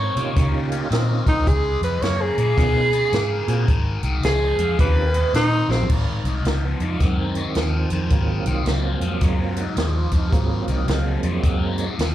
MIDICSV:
0, 0, Header, 1, 6, 480
1, 0, Start_track
1, 0, Tempo, 552995
1, 1279, Time_signature, 4, 2, 24, 8
1, 10544, End_track
2, 0, Start_track
2, 0, Title_t, "Tenor saxophone"
2, 0, Program_c, 0, 66
2, 0, Note_on_c, 0, 73, 108
2, 454, Note_off_c, 0, 73, 0
2, 1114, Note_on_c, 0, 63, 100
2, 1287, Note_on_c, 0, 68, 100
2, 1300, Note_off_c, 0, 63, 0
2, 1591, Note_off_c, 0, 68, 0
2, 1596, Note_on_c, 0, 71, 81
2, 1754, Note_on_c, 0, 73, 93
2, 1767, Note_off_c, 0, 71, 0
2, 1923, Note_on_c, 0, 68, 118
2, 1936, Note_off_c, 0, 73, 0
2, 3326, Note_off_c, 0, 68, 0
2, 3687, Note_on_c, 0, 68, 107
2, 4149, Note_off_c, 0, 68, 0
2, 4168, Note_on_c, 0, 71, 91
2, 4629, Note_off_c, 0, 71, 0
2, 4649, Note_on_c, 0, 63, 112
2, 4957, Note_on_c, 0, 60, 100
2, 4970, Note_off_c, 0, 63, 0
2, 5122, Note_off_c, 0, 60, 0
2, 10544, End_track
3, 0, Start_track
3, 0, Title_t, "Tonewheel organ"
3, 0, Program_c, 1, 16
3, 144, Note_on_c, 1, 58, 72
3, 148, Note_on_c, 1, 61, 68
3, 149, Note_on_c, 1, 63, 67
3, 149, Note_on_c, 1, 65, 70
3, 153, Note_on_c, 1, 67, 81
3, 765, Note_off_c, 1, 58, 0
3, 766, Note_off_c, 1, 61, 0
3, 767, Note_off_c, 1, 63, 0
3, 767, Note_off_c, 1, 65, 0
3, 769, Note_off_c, 1, 67, 0
3, 795, Note_on_c, 1, 60, 66
3, 799, Note_on_c, 1, 61, 55
3, 799, Note_on_c, 1, 63, 55
3, 802, Note_on_c, 1, 70, 69
3, 803, Note_on_c, 1, 65, 59
3, 1277, Note_off_c, 1, 60, 0
3, 1279, Note_off_c, 1, 61, 0
3, 1279, Note_off_c, 1, 63, 0
3, 1280, Note_off_c, 1, 70, 0
3, 1281, Note_off_c, 1, 65, 0
3, 2226, Note_on_c, 1, 59, 70
3, 2228, Note_on_c, 1, 61, 67
3, 2228, Note_on_c, 1, 65, 65
3, 2228, Note_on_c, 1, 70, 75
3, 2230, Note_on_c, 1, 63, 63
3, 2505, Note_off_c, 1, 59, 0
3, 2505, Note_off_c, 1, 65, 0
3, 2505, Note_off_c, 1, 70, 0
3, 2506, Note_off_c, 1, 61, 0
3, 2507, Note_off_c, 1, 63, 0
3, 3013, Note_on_c, 1, 58, 76
3, 3013, Note_on_c, 1, 65, 69
3, 3016, Note_on_c, 1, 60, 75
3, 3019, Note_on_c, 1, 68, 85
3, 3022, Note_on_c, 1, 66, 72
3, 3177, Note_off_c, 1, 58, 0
3, 3177, Note_off_c, 1, 65, 0
3, 3179, Note_off_c, 1, 60, 0
3, 3180, Note_off_c, 1, 68, 0
3, 3181, Note_off_c, 1, 66, 0
3, 4150, Note_on_c, 1, 60, 61
3, 4152, Note_on_c, 1, 65, 57
3, 4154, Note_on_c, 1, 63, 58
3, 4154, Note_on_c, 1, 67, 68
3, 4155, Note_on_c, 1, 61, 59
3, 4427, Note_off_c, 1, 60, 0
3, 4428, Note_off_c, 1, 65, 0
3, 4429, Note_off_c, 1, 61, 0
3, 4429, Note_off_c, 1, 63, 0
3, 4429, Note_off_c, 1, 67, 0
3, 4929, Note_on_c, 1, 58, 67
3, 4931, Note_on_c, 1, 60, 67
3, 4936, Note_on_c, 1, 65, 63
3, 4936, Note_on_c, 1, 66, 63
3, 4937, Note_on_c, 1, 68, 75
3, 5095, Note_off_c, 1, 58, 0
3, 5096, Note_off_c, 1, 60, 0
3, 5099, Note_off_c, 1, 65, 0
3, 5099, Note_off_c, 1, 66, 0
3, 5099, Note_off_c, 1, 68, 0
3, 5577, Note_on_c, 1, 62, 56
3, 5610, Note_off_c, 1, 62, 0
3, 5616, Note_on_c, 1, 63, 81
3, 5763, Note_off_c, 1, 63, 0
3, 5770, Note_on_c, 1, 59, 82
3, 5920, Note_off_c, 1, 59, 0
3, 5926, Note_on_c, 1, 63, 75
3, 6074, Note_on_c, 1, 51, 81
3, 6074, Note_on_c, 1, 60, 83
3, 6078, Note_off_c, 1, 63, 0
3, 7028, Note_off_c, 1, 60, 0
3, 7036, Note_on_c, 1, 54, 55
3, 7037, Note_on_c, 1, 58, 56
3, 7038, Note_on_c, 1, 60, 55
3, 7045, Note_on_c, 1, 65, 67
3, 7483, Note_off_c, 1, 51, 0
3, 8008, Note_on_c, 1, 68, 84
3, 8160, Note_off_c, 1, 68, 0
3, 8163, Note_off_c, 1, 65, 0
3, 8174, Note_on_c, 1, 65, 85
3, 8323, Note_off_c, 1, 65, 0
3, 8335, Note_on_c, 1, 63, 76
3, 8372, Note_off_c, 1, 54, 0
3, 8373, Note_off_c, 1, 58, 0
3, 8374, Note_off_c, 1, 60, 0
3, 8483, Note_off_c, 1, 63, 0
3, 8498, Note_on_c, 1, 68, 88
3, 8645, Note_off_c, 1, 68, 0
3, 8665, Note_on_c, 1, 65, 76
3, 8809, Note_off_c, 1, 65, 0
3, 8819, Note_on_c, 1, 63, 80
3, 8931, Note_on_c, 1, 67, 62
3, 8962, Note_on_c, 1, 58, 49
3, 8962, Note_on_c, 1, 60, 45
3, 8963, Note_on_c, 1, 54, 53
3, 8966, Note_off_c, 1, 63, 0
3, 8966, Note_off_c, 1, 67, 0
3, 8967, Note_on_c, 1, 65, 57
3, 8973, Note_on_c, 1, 68, 88
3, 9112, Note_off_c, 1, 65, 0
3, 9123, Note_off_c, 1, 68, 0
3, 9123, Note_on_c, 1, 65, 84
3, 9274, Note_on_c, 1, 63, 80
3, 9278, Note_off_c, 1, 65, 0
3, 9433, Note_off_c, 1, 63, 0
3, 9437, Note_on_c, 1, 56, 92
3, 10296, Note_off_c, 1, 58, 0
3, 10296, Note_off_c, 1, 60, 0
3, 10297, Note_off_c, 1, 54, 0
3, 10371, Note_off_c, 1, 56, 0
3, 10544, End_track
4, 0, Start_track
4, 0, Title_t, "Overdriven electric guitar"
4, 0, Program_c, 2, 29
4, 0, Note_on_c, 2, 51, 74
4, 0, Note_on_c, 2, 60, 91
4, 114, Note_off_c, 2, 51, 0
4, 116, Note_off_c, 2, 60, 0
4, 147, Note_on_c, 2, 51, 75
4, 151, Note_on_c, 2, 60, 80
4, 304, Note_off_c, 2, 51, 0
4, 305, Note_off_c, 2, 60, 0
4, 321, Note_on_c, 2, 51, 87
4, 326, Note_on_c, 2, 61, 90
4, 592, Note_off_c, 2, 51, 0
4, 594, Note_off_c, 2, 61, 0
4, 625, Note_on_c, 2, 51, 72
4, 627, Note_on_c, 2, 61, 81
4, 783, Note_off_c, 2, 51, 0
4, 784, Note_off_c, 2, 61, 0
4, 797, Note_on_c, 2, 51, 83
4, 800, Note_on_c, 2, 60, 87
4, 1070, Note_off_c, 2, 51, 0
4, 1072, Note_off_c, 2, 60, 0
4, 1098, Note_on_c, 2, 51, 69
4, 1105, Note_on_c, 2, 60, 92
4, 1259, Note_off_c, 2, 51, 0
4, 1263, Note_off_c, 2, 60, 0
4, 1286, Note_on_c, 2, 49, 85
4, 1292, Note_on_c, 2, 56, 84
4, 1554, Note_off_c, 2, 49, 0
4, 1558, Note_off_c, 2, 56, 0
4, 1593, Note_on_c, 2, 49, 76
4, 1593, Note_on_c, 2, 56, 78
4, 1747, Note_off_c, 2, 49, 0
4, 1747, Note_off_c, 2, 56, 0
4, 1767, Note_on_c, 2, 49, 71
4, 1770, Note_on_c, 2, 58, 85
4, 2035, Note_off_c, 2, 49, 0
4, 2036, Note_off_c, 2, 58, 0
4, 2068, Note_on_c, 2, 49, 71
4, 2068, Note_on_c, 2, 58, 88
4, 2224, Note_off_c, 2, 49, 0
4, 2225, Note_off_c, 2, 58, 0
4, 2234, Note_on_c, 2, 49, 82
4, 2237, Note_on_c, 2, 59, 89
4, 2508, Note_off_c, 2, 49, 0
4, 2510, Note_off_c, 2, 59, 0
4, 2541, Note_on_c, 2, 49, 76
4, 2545, Note_on_c, 2, 59, 87
4, 2701, Note_off_c, 2, 49, 0
4, 2703, Note_off_c, 2, 59, 0
4, 2725, Note_on_c, 2, 49, 77
4, 2735, Note_on_c, 2, 58, 85
4, 2994, Note_off_c, 2, 49, 0
4, 2999, Note_off_c, 2, 58, 0
4, 3027, Note_on_c, 2, 49, 71
4, 3030, Note_on_c, 2, 58, 82
4, 3184, Note_off_c, 2, 49, 0
4, 3186, Note_off_c, 2, 58, 0
4, 3200, Note_on_c, 2, 44, 79
4, 3203, Note_on_c, 2, 51, 98
4, 3472, Note_off_c, 2, 44, 0
4, 3473, Note_off_c, 2, 51, 0
4, 3506, Note_on_c, 2, 44, 76
4, 3510, Note_on_c, 2, 51, 80
4, 3663, Note_off_c, 2, 44, 0
4, 3666, Note_off_c, 2, 51, 0
4, 3688, Note_on_c, 2, 53, 91
4, 3689, Note_on_c, 2, 44, 80
4, 3956, Note_off_c, 2, 44, 0
4, 3956, Note_off_c, 2, 53, 0
4, 3985, Note_on_c, 2, 44, 76
4, 3993, Note_on_c, 2, 53, 94
4, 4143, Note_off_c, 2, 44, 0
4, 4147, Note_off_c, 2, 53, 0
4, 4164, Note_on_c, 2, 51, 86
4, 4168, Note_on_c, 2, 58, 89
4, 4434, Note_off_c, 2, 51, 0
4, 4436, Note_off_c, 2, 58, 0
4, 4464, Note_on_c, 2, 51, 79
4, 4469, Note_on_c, 2, 61, 81
4, 4623, Note_off_c, 2, 51, 0
4, 4625, Note_off_c, 2, 61, 0
4, 4642, Note_on_c, 2, 51, 83
4, 4649, Note_on_c, 2, 60, 83
4, 4913, Note_off_c, 2, 51, 0
4, 4917, Note_off_c, 2, 60, 0
4, 4941, Note_on_c, 2, 51, 76
4, 4945, Note_on_c, 2, 60, 85
4, 5101, Note_off_c, 2, 51, 0
4, 5103, Note_off_c, 2, 60, 0
4, 5125, Note_on_c, 2, 44, 73
4, 5131, Note_on_c, 2, 51, 81
4, 5395, Note_off_c, 2, 44, 0
4, 5398, Note_off_c, 2, 51, 0
4, 5429, Note_on_c, 2, 44, 70
4, 5434, Note_on_c, 2, 51, 78
4, 5585, Note_off_c, 2, 44, 0
4, 5588, Note_off_c, 2, 51, 0
4, 5612, Note_on_c, 2, 44, 72
4, 5620, Note_on_c, 2, 53, 82
4, 5878, Note_off_c, 2, 44, 0
4, 5882, Note_off_c, 2, 53, 0
4, 5908, Note_on_c, 2, 44, 74
4, 5917, Note_on_c, 2, 53, 70
4, 6065, Note_off_c, 2, 44, 0
4, 6069, Note_off_c, 2, 53, 0
4, 6090, Note_on_c, 2, 44, 85
4, 6095, Note_on_c, 2, 54, 79
4, 6357, Note_off_c, 2, 44, 0
4, 6360, Note_off_c, 2, 54, 0
4, 6392, Note_on_c, 2, 44, 74
4, 6399, Note_on_c, 2, 54, 77
4, 6547, Note_off_c, 2, 44, 0
4, 6550, Note_off_c, 2, 54, 0
4, 6573, Note_on_c, 2, 44, 73
4, 6578, Note_on_c, 2, 53, 78
4, 6839, Note_off_c, 2, 44, 0
4, 6841, Note_off_c, 2, 53, 0
4, 6875, Note_on_c, 2, 44, 73
4, 6882, Note_on_c, 2, 53, 76
4, 7029, Note_off_c, 2, 44, 0
4, 7032, Note_off_c, 2, 53, 0
4, 7051, Note_on_c, 2, 44, 77
4, 7055, Note_on_c, 2, 51, 88
4, 7318, Note_off_c, 2, 44, 0
4, 7320, Note_off_c, 2, 51, 0
4, 7348, Note_on_c, 2, 44, 66
4, 7354, Note_on_c, 2, 51, 75
4, 7506, Note_off_c, 2, 44, 0
4, 7508, Note_off_c, 2, 51, 0
4, 7521, Note_on_c, 2, 44, 71
4, 7527, Note_on_c, 2, 53, 77
4, 7793, Note_off_c, 2, 44, 0
4, 7796, Note_off_c, 2, 53, 0
4, 7823, Note_on_c, 2, 44, 71
4, 7826, Note_on_c, 2, 53, 79
4, 7983, Note_off_c, 2, 44, 0
4, 7985, Note_off_c, 2, 53, 0
4, 8009, Note_on_c, 2, 44, 81
4, 8012, Note_on_c, 2, 54, 92
4, 8277, Note_off_c, 2, 44, 0
4, 8279, Note_off_c, 2, 54, 0
4, 8303, Note_on_c, 2, 44, 76
4, 8307, Note_on_c, 2, 54, 77
4, 8463, Note_off_c, 2, 44, 0
4, 8465, Note_off_c, 2, 54, 0
4, 8479, Note_on_c, 2, 44, 76
4, 8488, Note_on_c, 2, 53, 88
4, 8752, Note_off_c, 2, 44, 0
4, 8757, Note_off_c, 2, 53, 0
4, 8790, Note_on_c, 2, 44, 72
4, 8791, Note_on_c, 2, 53, 83
4, 8947, Note_off_c, 2, 44, 0
4, 8947, Note_off_c, 2, 53, 0
4, 8965, Note_on_c, 2, 44, 82
4, 8970, Note_on_c, 2, 51, 85
4, 9236, Note_off_c, 2, 44, 0
4, 9238, Note_off_c, 2, 51, 0
4, 9269, Note_on_c, 2, 44, 68
4, 9273, Note_on_c, 2, 51, 82
4, 9426, Note_off_c, 2, 44, 0
4, 9428, Note_off_c, 2, 51, 0
4, 9441, Note_on_c, 2, 44, 70
4, 9444, Note_on_c, 2, 53, 92
4, 9714, Note_off_c, 2, 44, 0
4, 9715, Note_off_c, 2, 53, 0
4, 9749, Note_on_c, 2, 44, 67
4, 9752, Note_on_c, 2, 53, 76
4, 9907, Note_off_c, 2, 44, 0
4, 9908, Note_off_c, 2, 53, 0
4, 9925, Note_on_c, 2, 44, 84
4, 9929, Note_on_c, 2, 54, 84
4, 10196, Note_off_c, 2, 44, 0
4, 10198, Note_off_c, 2, 54, 0
4, 10226, Note_on_c, 2, 44, 73
4, 10232, Note_on_c, 2, 54, 78
4, 10386, Note_off_c, 2, 44, 0
4, 10388, Note_off_c, 2, 54, 0
4, 10401, Note_on_c, 2, 44, 76
4, 10405, Note_on_c, 2, 53, 91
4, 10544, Note_off_c, 2, 44, 0
4, 10544, Note_off_c, 2, 53, 0
4, 10544, End_track
5, 0, Start_track
5, 0, Title_t, "Fingered electric bass"
5, 0, Program_c, 3, 33
5, 138, Note_on_c, 3, 48, 86
5, 282, Note_off_c, 3, 48, 0
5, 318, Note_on_c, 3, 49, 95
5, 705, Note_off_c, 3, 49, 0
5, 786, Note_on_c, 3, 46, 80
5, 1035, Note_off_c, 3, 46, 0
5, 1099, Note_on_c, 3, 36, 86
5, 1243, Note_off_c, 3, 36, 0
5, 1277, Note_on_c, 3, 37, 95
5, 1521, Note_off_c, 3, 37, 0
5, 1571, Note_on_c, 3, 41, 88
5, 1718, Note_off_c, 3, 41, 0
5, 1750, Note_on_c, 3, 42, 92
5, 1997, Note_off_c, 3, 42, 0
5, 2061, Note_on_c, 3, 46, 81
5, 2204, Note_off_c, 3, 46, 0
5, 2236, Note_on_c, 3, 47, 91
5, 2624, Note_off_c, 3, 47, 0
5, 2713, Note_on_c, 3, 44, 86
5, 2959, Note_off_c, 3, 44, 0
5, 3018, Note_on_c, 3, 46, 78
5, 3163, Note_off_c, 3, 46, 0
5, 3197, Note_on_c, 3, 32, 93
5, 3441, Note_off_c, 3, 32, 0
5, 3495, Note_on_c, 3, 36, 86
5, 3641, Note_off_c, 3, 36, 0
5, 3675, Note_on_c, 3, 37, 91
5, 3920, Note_off_c, 3, 37, 0
5, 3973, Note_on_c, 3, 41, 81
5, 4120, Note_off_c, 3, 41, 0
5, 4157, Note_on_c, 3, 39, 91
5, 4545, Note_off_c, 3, 39, 0
5, 4629, Note_on_c, 3, 46, 83
5, 4877, Note_off_c, 3, 46, 0
5, 4934, Note_on_c, 3, 34, 84
5, 5080, Note_off_c, 3, 34, 0
5, 5119, Note_on_c, 3, 32, 80
5, 5363, Note_off_c, 3, 32, 0
5, 5416, Note_on_c, 3, 36, 83
5, 5561, Note_off_c, 3, 36, 0
5, 5598, Note_on_c, 3, 37, 86
5, 5842, Note_off_c, 3, 37, 0
5, 5903, Note_on_c, 3, 41, 79
5, 6046, Note_off_c, 3, 41, 0
5, 6078, Note_on_c, 3, 42, 89
5, 6466, Note_off_c, 3, 42, 0
5, 6559, Note_on_c, 3, 39, 81
5, 6803, Note_off_c, 3, 39, 0
5, 6867, Note_on_c, 3, 41, 75
5, 7009, Note_off_c, 3, 41, 0
5, 7037, Note_on_c, 3, 32, 87
5, 7282, Note_off_c, 3, 32, 0
5, 7345, Note_on_c, 3, 36, 78
5, 7487, Note_off_c, 3, 36, 0
5, 7519, Note_on_c, 3, 37, 82
5, 7763, Note_off_c, 3, 37, 0
5, 7820, Note_on_c, 3, 41, 78
5, 7964, Note_off_c, 3, 41, 0
5, 7996, Note_on_c, 3, 42, 92
5, 8385, Note_off_c, 3, 42, 0
5, 8477, Note_on_c, 3, 39, 83
5, 8723, Note_off_c, 3, 39, 0
5, 8781, Note_on_c, 3, 41, 79
5, 8925, Note_off_c, 3, 41, 0
5, 8962, Note_on_c, 3, 32, 81
5, 9206, Note_off_c, 3, 32, 0
5, 9270, Note_on_c, 3, 36, 87
5, 9411, Note_off_c, 3, 36, 0
5, 9446, Note_on_c, 3, 37, 90
5, 9688, Note_off_c, 3, 37, 0
5, 9749, Note_on_c, 3, 41, 84
5, 9891, Note_off_c, 3, 41, 0
5, 9923, Note_on_c, 3, 42, 85
5, 10310, Note_off_c, 3, 42, 0
5, 10405, Note_on_c, 3, 39, 83
5, 10544, Note_off_c, 3, 39, 0
5, 10544, End_track
6, 0, Start_track
6, 0, Title_t, "Drums"
6, 143, Note_on_c, 9, 42, 61
6, 230, Note_off_c, 9, 42, 0
6, 315, Note_on_c, 9, 42, 93
6, 317, Note_on_c, 9, 36, 126
6, 329, Note_on_c, 9, 38, 35
6, 402, Note_off_c, 9, 42, 0
6, 404, Note_off_c, 9, 36, 0
6, 416, Note_off_c, 9, 38, 0
6, 621, Note_on_c, 9, 42, 67
6, 708, Note_off_c, 9, 42, 0
6, 794, Note_on_c, 9, 42, 83
6, 809, Note_on_c, 9, 38, 103
6, 881, Note_off_c, 9, 42, 0
6, 896, Note_off_c, 9, 38, 0
6, 1098, Note_on_c, 9, 36, 81
6, 1098, Note_on_c, 9, 42, 65
6, 1185, Note_off_c, 9, 36, 0
6, 1185, Note_off_c, 9, 42, 0
6, 1277, Note_on_c, 9, 36, 108
6, 1277, Note_on_c, 9, 42, 82
6, 1364, Note_off_c, 9, 36, 0
6, 1364, Note_off_c, 9, 42, 0
6, 1587, Note_on_c, 9, 42, 59
6, 1673, Note_off_c, 9, 42, 0
6, 1755, Note_on_c, 9, 42, 78
6, 1770, Note_on_c, 9, 38, 99
6, 1842, Note_off_c, 9, 42, 0
6, 1857, Note_off_c, 9, 38, 0
6, 2063, Note_on_c, 9, 42, 56
6, 2149, Note_off_c, 9, 42, 0
6, 2236, Note_on_c, 9, 36, 119
6, 2240, Note_on_c, 9, 42, 87
6, 2255, Note_on_c, 9, 38, 36
6, 2323, Note_off_c, 9, 36, 0
6, 2327, Note_off_c, 9, 42, 0
6, 2342, Note_off_c, 9, 38, 0
6, 2541, Note_on_c, 9, 42, 58
6, 2628, Note_off_c, 9, 42, 0
6, 2714, Note_on_c, 9, 42, 78
6, 2728, Note_on_c, 9, 38, 110
6, 2800, Note_off_c, 9, 42, 0
6, 2815, Note_off_c, 9, 38, 0
6, 3021, Note_on_c, 9, 42, 61
6, 3108, Note_off_c, 9, 42, 0
6, 3195, Note_on_c, 9, 42, 73
6, 3197, Note_on_c, 9, 36, 97
6, 3282, Note_off_c, 9, 42, 0
6, 3283, Note_off_c, 9, 36, 0
6, 3496, Note_on_c, 9, 42, 62
6, 3583, Note_off_c, 9, 42, 0
6, 3673, Note_on_c, 9, 42, 81
6, 3687, Note_on_c, 9, 38, 108
6, 3759, Note_off_c, 9, 42, 0
6, 3774, Note_off_c, 9, 38, 0
6, 3980, Note_on_c, 9, 42, 65
6, 4066, Note_off_c, 9, 42, 0
6, 4158, Note_on_c, 9, 36, 117
6, 4158, Note_on_c, 9, 42, 92
6, 4245, Note_off_c, 9, 36, 0
6, 4245, Note_off_c, 9, 42, 0
6, 4461, Note_on_c, 9, 42, 59
6, 4548, Note_off_c, 9, 42, 0
6, 4638, Note_on_c, 9, 42, 85
6, 4652, Note_on_c, 9, 38, 109
6, 4724, Note_off_c, 9, 42, 0
6, 4739, Note_off_c, 9, 38, 0
6, 4959, Note_on_c, 9, 38, 65
6, 5046, Note_off_c, 9, 38, 0
6, 5060, Note_on_c, 9, 43, 86
6, 5117, Note_on_c, 9, 49, 98
6, 5120, Note_on_c, 9, 36, 105
6, 5147, Note_off_c, 9, 43, 0
6, 5204, Note_off_c, 9, 49, 0
6, 5207, Note_off_c, 9, 36, 0
6, 5424, Note_on_c, 9, 42, 58
6, 5511, Note_off_c, 9, 42, 0
6, 5599, Note_on_c, 9, 42, 72
6, 5613, Note_on_c, 9, 38, 106
6, 5685, Note_off_c, 9, 42, 0
6, 5700, Note_off_c, 9, 38, 0
6, 5902, Note_on_c, 9, 42, 52
6, 5989, Note_off_c, 9, 42, 0
6, 6078, Note_on_c, 9, 42, 85
6, 6080, Note_on_c, 9, 36, 116
6, 6092, Note_on_c, 9, 38, 34
6, 6164, Note_off_c, 9, 42, 0
6, 6167, Note_off_c, 9, 36, 0
6, 6179, Note_off_c, 9, 38, 0
6, 6379, Note_on_c, 9, 42, 55
6, 6466, Note_off_c, 9, 42, 0
6, 6552, Note_on_c, 9, 42, 74
6, 6567, Note_on_c, 9, 38, 105
6, 6639, Note_off_c, 9, 42, 0
6, 6654, Note_off_c, 9, 38, 0
6, 6857, Note_on_c, 9, 42, 62
6, 6944, Note_off_c, 9, 42, 0
6, 7033, Note_on_c, 9, 42, 76
6, 7039, Note_on_c, 9, 36, 98
6, 7120, Note_off_c, 9, 42, 0
6, 7126, Note_off_c, 9, 36, 0
6, 7340, Note_on_c, 9, 42, 58
6, 7427, Note_off_c, 9, 42, 0
6, 7515, Note_on_c, 9, 42, 78
6, 7530, Note_on_c, 9, 38, 101
6, 7602, Note_off_c, 9, 42, 0
6, 7617, Note_off_c, 9, 38, 0
6, 7822, Note_on_c, 9, 42, 58
6, 7909, Note_off_c, 9, 42, 0
6, 7994, Note_on_c, 9, 42, 90
6, 7999, Note_on_c, 9, 36, 122
6, 8008, Note_on_c, 9, 38, 33
6, 8080, Note_off_c, 9, 42, 0
6, 8086, Note_off_c, 9, 36, 0
6, 8095, Note_off_c, 9, 38, 0
6, 8301, Note_on_c, 9, 42, 65
6, 8388, Note_off_c, 9, 42, 0
6, 8477, Note_on_c, 9, 42, 83
6, 8491, Note_on_c, 9, 38, 102
6, 8563, Note_off_c, 9, 42, 0
6, 8578, Note_off_c, 9, 38, 0
6, 8779, Note_on_c, 9, 42, 68
6, 8783, Note_on_c, 9, 36, 74
6, 8866, Note_off_c, 9, 42, 0
6, 8870, Note_off_c, 9, 36, 0
6, 8962, Note_on_c, 9, 36, 103
6, 8963, Note_on_c, 9, 42, 82
6, 9049, Note_off_c, 9, 36, 0
6, 9050, Note_off_c, 9, 42, 0
6, 9267, Note_on_c, 9, 42, 58
6, 9354, Note_off_c, 9, 42, 0
6, 9443, Note_on_c, 9, 42, 77
6, 9457, Note_on_c, 9, 38, 99
6, 9529, Note_off_c, 9, 42, 0
6, 9544, Note_off_c, 9, 38, 0
6, 9746, Note_on_c, 9, 42, 57
6, 9833, Note_off_c, 9, 42, 0
6, 9925, Note_on_c, 9, 36, 114
6, 9926, Note_on_c, 9, 42, 84
6, 10012, Note_off_c, 9, 36, 0
6, 10013, Note_off_c, 9, 42, 0
6, 10222, Note_on_c, 9, 42, 55
6, 10309, Note_off_c, 9, 42, 0
6, 10408, Note_on_c, 9, 42, 76
6, 10422, Note_on_c, 9, 38, 104
6, 10494, Note_off_c, 9, 42, 0
6, 10509, Note_off_c, 9, 38, 0
6, 10544, End_track
0, 0, End_of_file